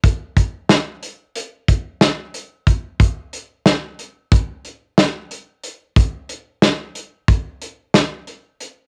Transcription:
\new DrumStaff \with { instrumentName = "Drums" } \drummode { \time 9/8 \tempo 4. = 61 <hh bd>8 <hh bd>8 <hh sn>8 hh8 hh8 <hh bd>8 <hh sn>8 hh8 <hh bd>8 | <hh bd>8 hh8 <hh sn>8 hh8 <hh bd>8 hh8 <hh sn>8 hh8 hh8 | <hh bd>8 hh8 <hh sn>8 hh8 <hh bd>8 hh8 <hh sn>8 hh8 hh8 | }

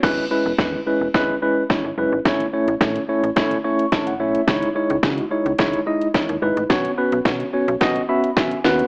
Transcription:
<<
  \new Staff \with { instrumentName = "Tine electric piano" } { \time 4/4 \key e \major \tempo 4 = 108 << { r1 | r2 r8 cis'''8 a''16 fis''16 e''8 | r1 | r2 r8 b''8 gis''8 fis''8 | } \\ { <gis cis' e' b'>8 <gis cis' e' b'>8 <gis cis' e' b'>8 <gis cis' e' b'>8 <gis cis' e' b'>8 <gis cis' e' b'>8 <gis cis' e' cis''>8 <gis cis' e' b'>8 | <a cis' e' cis''>8 <a cis' e' cis''>8 <a cis' e' cis''>8 <a cis' e' cis''>8 <a cis' e' cis''>8 <a cis' e' cis''>8 <a cis' e' cis''>8 <a cis' e' cis''>8 | <gis dis' e' cis''>8 <gis dis' e' cis''>8 <gis dis' e' fis'>8 <gis dis' e' cis''>8 <gis dis' e' cis''>8 <gis dis' e' dis''>8 <gis dis' e' cis''>8 <gis dis' e' b'>8 | <b cis' fis' cis''>8 <b cis' fis' b'>8 <b cis' fis' cis''>8 <b cis' fis' cis''>8 <b cis' fis' dis''>8 <b cis' fis' e''>8 <b cis' fis' e''>8 <b cis' fis' b'>8 | } >> }
  \new Staff \with { instrumentName = "FM bass" } { \clef bass \time 4/4 \key e \major e,,8 r16 e,,16 e,8 r16 e,,16 e,,8 r8. gis,,16 fis,,16 gis,,16 | a,,8 r16 a,,16 a,8 r16 a,,16 a,,8 r8 a,,8 b,,8 | cis,8 r16 cis,16 cis8 r16 cis,16 cis,8 r8. dis,16 gis,,16 a,,16 | b,,8 r16 b,,16 b,8 r16 b,,16 b,,8 r8 b,,8 dis,8 | }
  \new DrumStaff \with { instrumentName = "Drums" } \drummode { \time 4/4 <cymc bd sn>4 <bd sn>4 <bd sn>4 <bd sn>4 | <hh bd sn>16 hh8 hh16 <hh bd sn>16 hh8 hh16 <hh bd sn>16 hh8 hh16 <hh bd sn>16 hh8 hh16 | <hh bd sn>16 hh8 hh16 <hh bd sn>16 hh8 hh16 <hh bd sn>16 hh8 hh16 <hh bd sn>16 hh8 hh16 | <hh bd sn>16 hh8 hh16 <hh bd sn>16 hh8 hh16 <hh bd sn>16 hh8 hh16 <hh bd sn>16 hh16 sn16 hh16 | }
>>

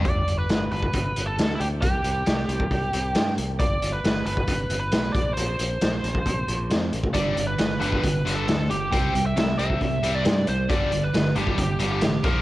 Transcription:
<<
  \new Staff \with { instrumentName = "Lead electric guitar" } { \time 4/4 \key g \major \tempo 4 = 135 d''8. b'8. b'4~ b'16 a'8~ a'32 e'32 g'8 | g'2.~ g'8 r8 | d''8. b'8. b'4~ b'16 b'8. d''8 | c''2.~ c''8 r8 |
d''8. b'8. b'4~ b'16 a'8. g'8 | g''8. e''8. e''4~ e''16 d''8. c''8 | d''8. b'8. g'8 g'8. g'8. bes'8 | }
  \new Staff \with { instrumentName = "Distorted electric guitar" } { \clef bass \time 4/4 \key g \major r1 | r1 | r1 | r1 |
<g, d g>8 <g, d>8 <g, d>8 <g, d g>8 <g, d>8 <g, d g>8 <g, d>8 <g, d>8 | <c g c'>8 <c g>8 <c g>8 <c g c'>8 <c g>8 <c g c'>8 <c g>8 <c g>8 | <g, d g>8 <g, d>8 <g, d>8 <g, d g>8 <g, d>8 <g, d g>8 <g, d>8 <bes, f bes>8 | }
  \new Staff \with { instrumentName = "Overdriven electric guitar" } { \clef bass \time 4/4 \key g \major r1 | r1 | r1 | r1 |
<g, d g>8 <g, d>8 <g, d>8 <g, d g>8 <g, d>8 <g, d g>8 <g, d>8 <g, d>8 | <c g c'>8 <c g>8 <c g>8 <c g c'>8 <c g>8 <c g c'>8 <c g>8 <c g>8 | <g, d g>8 <g, d>8 <g, d>8 <g, d g>8 <g, d>8 <g, d g>8 <g, d>8 <bes, f bes>8 | }
  \new Staff \with { instrumentName = "Fingered electric bass" } { \clef bass \time 4/4 \key g \major g,,8 g,,8 g,,8 g,,8 g,,8 g,,8 d,8 d,8 | c,8 c,8 c,8 c,8 c,8 c,8 g,8 c,8 | g,,8 g,,8 g,,8 g,,8 g,,8 g,,8 b,,8 bes,,8 | bes,,8 bes,,8 bes,,8 bes,,8 bes,,8 bes,,8 f,8 a,,8 |
g,,8 g,,8 g,,8 g,,8 g,,8 g,,8 d,8 g,,8 | c,8 c,8 c,8 c,8 c,8 c,8 g,8 c,8 | g,,8 g,,8 g,,8 g,,8 g,,8 g,,8 a,,8 bes,,8 | }
  \new DrumStaff \with { instrumentName = "Drums" } \drummode { \time 4/4 <hh bd>8 hh8 <hh sn>8 hh16 bd16 <hh bd>8 hh8 <hh sn>8 hh8 | <hh bd>8 hh8 <hh sn>8 hh16 bd16 <hh bd>8 hh8 <hh sn>8 hh8 | <hh bd>8 hh8 <hh sn>8 hh16 bd16 <hh bd>8 hh8 <hh sn>8 <hh bd>8 | hh8 hh8 <hh sn>8 hh16 bd16 <hh bd>8 hh8 <hh sn>8 hh16 bd16 |
<hh bd>8 hh8 <hh sn>8 hh16 bd16 <hh bd>8 hh8 <hh sn>8 hh8 | <hh bd>8 hh8 <hh sn>8 hh16 bd16 <hh bd>8 hh8 <hh sn>8 hh8 | <hh bd>8 hh8 <hh sn>8 hh16 bd16 <hh bd>8 hh8 <hh sn>8 <hh bd>8 | }
>>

